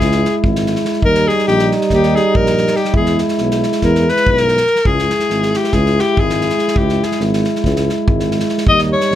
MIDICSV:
0, 0, Header, 1, 6, 480
1, 0, Start_track
1, 0, Tempo, 424929
1, 1178, Time_signature, 9, 3, 24, 8
1, 10337, End_track
2, 0, Start_track
2, 0, Title_t, "Alto saxophone"
2, 0, Program_c, 0, 65
2, 0, Note_on_c, 0, 68, 84
2, 403, Note_off_c, 0, 68, 0
2, 1186, Note_on_c, 0, 70, 96
2, 1440, Note_on_c, 0, 68, 88
2, 1457, Note_off_c, 0, 70, 0
2, 1658, Note_off_c, 0, 68, 0
2, 1665, Note_on_c, 0, 67, 94
2, 1932, Note_off_c, 0, 67, 0
2, 2176, Note_on_c, 0, 67, 85
2, 2436, Note_on_c, 0, 68, 80
2, 2453, Note_off_c, 0, 67, 0
2, 2665, Note_on_c, 0, 70, 91
2, 2682, Note_off_c, 0, 68, 0
2, 3124, Note_on_c, 0, 67, 78
2, 3141, Note_off_c, 0, 70, 0
2, 3335, Note_off_c, 0, 67, 0
2, 3352, Note_on_c, 0, 68, 72
2, 3608, Note_off_c, 0, 68, 0
2, 4344, Note_on_c, 0, 70, 91
2, 4624, Note_on_c, 0, 71, 105
2, 4641, Note_off_c, 0, 70, 0
2, 4867, Note_on_c, 0, 70, 102
2, 4884, Note_off_c, 0, 71, 0
2, 5492, Note_on_c, 0, 68, 84
2, 5509, Note_off_c, 0, 70, 0
2, 6294, Note_on_c, 0, 67, 77
2, 6311, Note_off_c, 0, 68, 0
2, 6479, Note_on_c, 0, 68, 80
2, 6496, Note_off_c, 0, 67, 0
2, 6781, Note_on_c, 0, 67, 85
2, 6798, Note_off_c, 0, 68, 0
2, 7000, Note_on_c, 0, 68, 88
2, 7017, Note_off_c, 0, 67, 0
2, 7663, Note_on_c, 0, 67, 82
2, 7680, Note_off_c, 0, 68, 0
2, 7956, Note_on_c, 0, 68, 72
2, 7973, Note_off_c, 0, 67, 0
2, 8164, Note_off_c, 0, 68, 0
2, 9812, Note_on_c, 0, 75, 101
2, 9939, Note_off_c, 0, 75, 0
2, 10085, Note_on_c, 0, 73, 96
2, 10337, Note_off_c, 0, 73, 0
2, 10337, End_track
3, 0, Start_track
3, 0, Title_t, "French horn"
3, 0, Program_c, 1, 60
3, 0, Note_on_c, 1, 64, 62
3, 1172, Note_on_c, 1, 63, 81
3, 1189, Note_off_c, 1, 64, 0
3, 3321, Note_on_c, 1, 64, 70
3, 3338, Note_off_c, 1, 63, 0
3, 5324, Note_off_c, 1, 64, 0
3, 5497, Note_on_c, 1, 64, 60
3, 9770, Note_off_c, 1, 64, 0
3, 9811, Note_on_c, 1, 63, 93
3, 10337, Note_off_c, 1, 63, 0
3, 10337, End_track
4, 0, Start_track
4, 0, Title_t, "Euphonium"
4, 0, Program_c, 2, 58
4, 0, Note_on_c, 2, 56, 67
4, 1131, Note_off_c, 2, 56, 0
4, 1178, Note_on_c, 2, 55, 84
4, 3334, Note_on_c, 2, 56, 66
4, 3351, Note_off_c, 2, 55, 0
4, 5330, Note_off_c, 2, 56, 0
4, 5510, Note_on_c, 2, 56, 60
4, 9811, Note_on_c, 2, 55, 83
4, 9828, Note_off_c, 2, 56, 0
4, 10337, Note_off_c, 2, 55, 0
4, 10337, End_track
5, 0, Start_track
5, 0, Title_t, "Tuba"
5, 0, Program_c, 3, 58
5, 10, Note_on_c, 3, 37, 99
5, 285, Note_off_c, 3, 37, 0
5, 497, Note_on_c, 3, 32, 82
5, 867, Note_off_c, 3, 32, 0
5, 1171, Note_on_c, 3, 39, 80
5, 1447, Note_off_c, 3, 39, 0
5, 1674, Note_on_c, 3, 34, 86
5, 1949, Note_off_c, 3, 34, 0
5, 2167, Note_on_c, 3, 39, 96
5, 2443, Note_off_c, 3, 39, 0
5, 2674, Note_on_c, 3, 34, 75
5, 3040, Note_off_c, 3, 34, 0
5, 3353, Note_on_c, 3, 40, 76
5, 3623, Note_off_c, 3, 40, 0
5, 3844, Note_on_c, 3, 35, 80
5, 4116, Note_off_c, 3, 35, 0
5, 4333, Note_on_c, 3, 40, 99
5, 4608, Note_off_c, 3, 40, 0
5, 4840, Note_on_c, 3, 35, 81
5, 5204, Note_off_c, 3, 35, 0
5, 5493, Note_on_c, 3, 37, 81
5, 5769, Note_off_c, 3, 37, 0
5, 5990, Note_on_c, 3, 32, 77
5, 6265, Note_off_c, 3, 32, 0
5, 6481, Note_on_c, 3, 37, 98
5, 6758, Note_off_c, 3, 37, 0
5, 6972, Note_on_c, 3, 32, 80
5, 7343, Note_off_c, 3, 32, 0
5, 7633, Note_on_c, 3, 37, 80
5, 7913, Note_off_c, 3, 37, 0
5, 8137, Note_on_c, 3, 32, 89
5, 8416, Note_off_c, 3, 32, 0
5, 8641, Note_on_c, 3, 37, 96
5, 8918, Note_off_c, 3, 37, 0
5, 9139, Note_on_c, 3, 32, 83
5, 9508, Note_off_c, 3, 32, 0
5, 9805, Note_on_c, 3, 39, 91
5, 10082, Note_off_c, 3, 39, 0
5, 10293, Note_on_c, 3, 34, 91
5, 10337, Note_off_c, 3, 34, 0
5, 10337, End_track
6, 0, Start_track
6, 0, Title_t, "Drums"
6, 0, Note_on_c, 9, 36, 65
6, 7, Note_on_c, 9, 38, 30
6, 107, Note_off_c, 9, 36, 0
6, 120, Note_off_c, 9, 38, 0
6, 130, Note_on_c, 9, 38, 23
6, 243, Note_off_c, 9, 38, 0
6, 283, Note_on_c, 9, 38, 27
6, 395, Note_off_c, 9, 38, 0
6, 494, Note_on_c, 9, 36, 82
6, 607, Note_off_c, 9, 36, 0
6, 626, Note_on_c, 9, 38, 27
6, 739, Note_off_c, 9, 38, 0
6, 748, Note_on_c, 9, 38, 27
6, 854, Note_off_c, 9, 38, 0
6, 854, Note_on_c, 9, 38, 27
6, 960, Note_off_c, 9, 38, 0
6, 960, Note_on_c, 9, 38, 27
6, 1053, Note_off_c, 9, 38, 0
6, 1053, Note_on_c, 9, 38, 23
6, 1157, Note_on_c, 9, 36, 80
6, 1166, Note_off_c, 9, 38, 0
6, 1270, Note_off_c, 9, 36, 0
6, 1295, Note_on_c, 9, 38, 21
6, 1408, Note_off_c, 9, 38, 0
6, 1458, Note_on_c, 9, 38, 24
6, 1565, Note_off_c, 9, 38, 0
6, 1565, Note_on_c, 9, 38, 23
6, 1666, Note_off_c, 9, 38, 0
6, 1666, Note_on_c, 9, 38, 25
6, 1779, Note_off_c, 9, 38, 0
6, 1795, Note_on_c, 9, 38, 24
6, 1908, Note_off_c, 9, 38, 0
6, 1935, Note_on_c, 9, 38, 28
6, 2046, Note_off_c, 9, 38, 0
6, 2046, Note_on_c, 9, 38, 25
6, 2142, Note_off_c, 9, 38, 0
6, 2142, Note_on_c, 9, 38, 26
6, 2151, Note_on_c, 9, 36, 55
6, 2255, Note_off_c, 9, 38, 0
6, 2263, Note_off_c, 9, 36, 0
6, 2294, Note_on_c, 9, 38, 20
6, 2407, Note_off_c, 9, 38, 0
6, 2441, Note_on_c, 9, 38, 24
6, 2554, Note_off_c, 9, 38, 0
6, 2655, Note_on_c, 9, 36, 90
6, 2768, Note_off_c, 9, 36, 0
6, 2781, Note_on_c, 9, 38, 24
6, 2894, Note_off_c, 9, 38, 0
6, 2907, Note_on_c, 9, 38, 25
6, 3016, Note_off_c, 9, 38, 0
6, 3016, Note_on_c, 9, 38, 29
6, 3117, Note_off_c, 9, 38, 0
6, 3117, Note_on_c, 9, 38, 28
6, 3214, Note_off_c, 9, 38, 0
6, 3214, Note_on_c, 9, 38, 25
6, 3318, Note_on_c, 9, 36, 91
6, 3327, Note_off_c, 9, 38, 0
6, 3431, Note_off_c, 9, 36, 0
6, 3455, Note_on_c, 9, 38, 23
6, 3568, Note_off_c, 9, 38, 0
6, 3595, Note_on_c, 9, 38, 30
6, 3708, Note_off_c, 9, 38, 0
6, 3709, Note_on_c, 9, 38, 25
6, 3816, Note_off_c, 9, 38, 0
6, 3816, Note_on_c, 9, 38, 29
6, 3929, Note_off_c, 9, 38, 0
6, 3963, Note_on_c, 9, 38, 24
6, 4075, Note_off_c, 9, 38, 0
6, 4097, Note_on_c, 9, 38, 29
6, 4203, Note_off_c, 9, 38, 0
6, 4203, Note_on_c, 9, 38, 26
6, 4308, Note_off_c, 9, 38, 0
6, 4308, Note_on_c, 9, 38, 27
6, 4319, Note_on_c, 9, 36, 57
6, 4420, Note_off_c, 9, 38, 0
6, 4432, Note_off_c, 9, 36, 0
6, 4463, Note_on_c, 9, 38, 27
6, 4576, Note_off_c, 9, 38, 0
6, 4614, Note_on_c, 9, 38, 30
6, 4705, Note_off_c, 9, 38, 0
6, 4705, Note_on_c, 9, 38, 24
6, 4818, Note_off_c, 9, 38, 0
6, 4818, Note_on_c, 9, 36, 86
6, 4931, Note_off_c, 9, 36, 0
6, 4939, Note_on_c, 9, 38, 24
6, 5051, Note_off_c, 9, 38, 0
6, 5063, Note_on_c, 9, 38, 26
6, 5163, Note_off_c, 9, 38, 0
6, 5163, Note_on_c, 9, 38, 26
6, 5274, Note_off_c, 9, 38, 0
6, 5274, Note_on_c, 9, 38, 21
6, 5372, Note_off_c, 9, 38, 0
6, 5372, Note_on_c, 9, 38, 22
6, 5483, Note_on_c, 9, 36, 83
6, 5485, Note_off_c, 9, 38, 0
6, 5596, Note_off_c, 9, 36, 0
6, 5633, Note_on_c, 9, 38, 21
6, 5746, Note_off_c, 9, 38, 0
6, 5759, Note_on_c, 9, 38, 29
6, 5869, Note_off_c, 9, 38, 0
6, 5869, Note_on_c, 9, 38, 23
6, 5982, Note_off_c, 9, 38, 0
6, 5987, Note_on_c, 9, 38, 26
6, 6100, Note_off_c, 9, 38, 0
6, 6128, Note_on_c, 9, 38, 28
6, 6241, Note_off_c, 9, 38, 0
6, 6255, Note_on_c, 9, 38, 27
6, 6368, Note_off_c, 9, 38, 0
6, 6371, Note_on_c, 9, 38, 26
6, 6463, Note_off_c, 9, 38, 0
6, 6463, Note_on_c, 9, 38, 31
6, 6472, Note_on_c, 9, 36, 66
6, 6576, Note_off_c, 9, 38, 0
6, 6585, Note_off_c, 9, 36, 0
6, 6619, Note_on_c, 9, 38, 24
6, 6732, Note_off_c, 9, 38, 0
6, 6767, Note_on_c, 9, 38, 28
6, 6880, Note_off_c, 9, 38, 0
6, 6973, Note_on_c, 9, 36, 88
6, 7086, Note_off_c, 9, 36, 0
6, 7112, Note_on_c, 9, 38, 25
6, 7225, Note_off_c, 9, 38, 0
6, 7240, Note_on_c, 9, 38, 30
6, 7338, Note_off_c, 9, 38, 0
6, 7338, Note_on_c, 9, 38, 28
6, 7440, Note_off_c, 9, 38, 0
6, 7440, Note_on_c, 9, 38, 26
6, 7542, Note_off_c, 9, 38, 0
6, 7542, Note_on_c, 9, 38, 27
6, 7635, Note_on_c, 9, 36, 87
6, 7655, Note_off_c, 9, 38, 0
6, 7748, Note_off_c, 9, 36, 0
6, 7784, Note_on_c, 9, 38, 24
6, 7897, Note_off_c, 9, 38, 0
6, 7937, Note_on_c, 9, 38, 30
6, 8035, Note_off_c, 9, 38, 0
6, 8035, Note_on_c, 9, 38, 25
6, 8139, Note_off_c, 9, 38, 0
6, 8139, Note_on_c, 9, 38, 30
6, 8252, Note_off_c, 9, 38, 0
6, 8282, Note_on_c, 9, 38, 26
6, 8395, Note_off_c, 9, 38, 0
6, 8405, Note_on_c, 9, 38, 28
6, 8518, Note_off_c, 9, 38, 0
6, 8533, Note_on_c, 9, 38, 24
6, 8630, Note_on_c, 9, 36, 61
6, 8642, Note_off_c, 9, 38, 0
6, 8642, Note_on_c, 9, 38, 27
6, 8743, Note_off_c, 9, 36, 0
6, 8755, Note_off_c, 9, 38, 0
6, 8765, Note_on_c, 9, 38, 27
6, 8878, Note_off_c, 9, 38, 0
6, 8914, Note_on_c, 9, 38, 27
6, 9027, Note_off_c, 9, 38, 0
6, 9123, Note_on_c, 9, 36, 92
6, 9236, Note_off_c, 9, 36, 0
6, 9259, Note_on_c, 9, 38, 27
6, 9372, Note_off_c, 9, 38, 0
6, 9387, Note_on_c, 9, 38, 28
6, 9485, Note_off_c, 9, 38, 0
6, 9485, Note_on_c, 9, 38, 30
6, 9589, Note_off_c, 9, 38, 0
6, 9589, Note_on_c, 9, 38, 30
6, 9689, Note_off_c, 9, 38, 0
6, 9689, Note_on_c, 9, 38, 29
6, 9789, Note_on_c, 9, 36, 99
6, 9802, Note_off_c, 9, 38, 0
6, 9902, Note_off_c, 9, 36, 0
6, 9923, Note_on_c, 9, 38, 29
6, 10036, Note_off_c, 9, 38, 0
6, 10173, Note_on_c, 9, 38, 25
6, 10286, Note_off_c, 9, 38, 0
6, 10299, Note_on_c, 9, 38, 31
6, 10337, Note_off_c, 9, 38, 0
6, 10337, End_track
0, 0, End_of_file